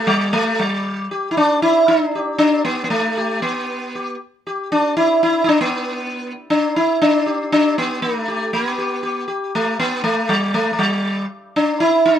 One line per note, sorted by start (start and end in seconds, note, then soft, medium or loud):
0.07 0.34 G3 medium
0.33 0.60 A3 medium
0.59 1.07 G3 medium
1.11 1.31 G4 soft
1.31 1.37 E4 medium
1.37 1.61 D4 medium
1.62 1.89 E4 medium
1.88 2.03 D#4 medium
2.03 2.37 D4 medium
2.15 2.38 G4 soft
2.38 2.64 D4 medium
2.65 2.82 B3 medium
2.84 2.90 B3 medium
2.90 3.42 A3 medium
3.17 3.41 G4 soft
3.42 4.15 B3 medium
3.95 4.18 G4 soft
4.47 4.70 G4 soft
4.72 4.96 D4 medium
4.97 5.22 E4 medium
5.23 5.43 E4 medium
5.44 5.47 E4 medium
5.49 5.60 D4 medium
5.61 6.33 B3 medium
6.50 6.76 D4 medium
6.76 6.99 E4 medium
7.02 7.51 D4 medium
7.26 7.49 G4 soft
7.52 7.78 D4 medium
7.78 8.02 B3 medium
8.02 8.17 A#3 medium
8.17 8.53 A3 medium
8.28 8.51 G4 soft
8.53 9.24 B3 medium
8.78 9.01 G4 soft
9.03 9.26 G4 soft
9.28 9.51 G4 soft
9.55 9.79 A3 medium
9.80 10.03 B3 medium
10.04 10.30 A3 medium
10.29 10.55 G3 medium
10.54 10.72 A3 medium
10.73 10.79 A3 soft
10.79 11.26 G3 medium
11.56 11.81 D4 medium
11.80 12.06 E4 medium
12.06 12.19 D#4 medium